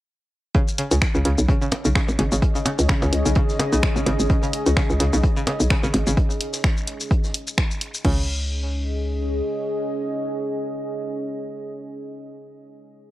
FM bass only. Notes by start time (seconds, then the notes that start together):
0.91 C#2
1.15 C#2
1.25 C#2
1.38 B1
1.85 B1
2.09 G#1
2.19 G#1
2.32 G#1
2.79 C#2
3.02 C#2
3.13 C#2
3.26 B1
3.73 B1
3.96 G#1
4.06 G#1
4.20 G#1
4.66 C#2
4.90 C#2
5.00 C#2
5.13 B1
5.60 B1
5.83 G#1
5.94 G#1
6.07 G#1
8.05 C#2